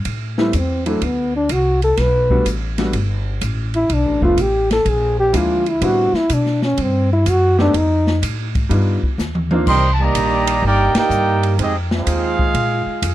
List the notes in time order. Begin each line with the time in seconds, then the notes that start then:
0.05 A2, kick, ride
0.38 G3 A3 B3 C4 E4, snare
0.53 E2 C4, kick, hi-hat pedal, ride
0.86 F#3 A3 C4 D4 E4, ride
1.01 D2 B3, kick, ride
1.36 D4
1.49 C2 F#4, kick, hi-hat pedal, ride
1.82 A4, ride
1.97 B1 B4, kick, snare, ride
2.30 G3 A3 B3 D4 F#4, kick
2.45 A1, hi-hat pedal, ride
2.78 G3 A3 B3 D4 F#4, snare, ride
2.93 G1, kick, ride
3.41 A1, kick, hi-hat pedal, ride
3.74 E4, ride
3.89 B1, kick, ride
3.93 D4
4.05 A1
4.21 F1 F3 A3 B3 D4 F4, kick
4.37 A1 G4, kick, hi-hat pedal, ride
4.71 A4, snare, ride
4.85 A#1 G#4, kick, ride
5.20 G4
5.33 D2 F3 G#3 A#3 D4 E4, kick, hi-hat pedal, ride
5.37 F4
5.66 E4, ride
5.81 A2 G3 B3 C4 D4 E4, kick, ride
5.85 F#4
6.13 E4, muted upright bass stroke, snare
6.30 B2 D4, kick, hi-hat pedal, ride
6.46 snare
6.62 C#4, snare
6.78 G2, kick, ride
6.82 C4
7.13 E4
7.26 F#2, kick, hi-hat pedal, ride
7.30 F#4
7.59 A3 B3 C4 D4 D#4 G4, snare
7.74 F2, kick, ride
7.78 D#4
8.07 snare
8.22 A2, kick, hi-hat pedal, ride
8.55 kick, ride
8.69 G2 G3 B3 D4 D#4 F4, kick, ride
9.03 muted upright bass stroke, kick
9.18 D#2, snare, hi-hat pedal
9.35 mid tom
9.51 A#3 C4 D4 D#4 F4, mid tom
9.67 C2 D#3 G3 C4 A#4 D#5 G5 C6, kick, crash
9.93 A5
10.00 D#3 G3 A#3 G4 D5 D#5 A#5
10.15 A#1, kick, hi-hat pedal, ride
10.47 ride
10.62 G1 A#3 D#4 G4 A#4 D5 G5, kick
10.94 A#3 D#4 G4 A#4 D5 G5, muted upright bass stroke, snare, ride
11.09 G2, hi-hat pedal
11.43 ride
11.58 F2 G#3 C4 D#4 G4 G#4 D#5, kick, ride
11.91 G#3 C4 D#4 F4 G#4 C5 F5, snare
12.06 D#2, kick, hi-hat pedal, ride
12.39 kick
12.54 A#2, kick, ride
12.86 muted upright bass stroke
13.02 F2, kick, hi-hat pedal, ride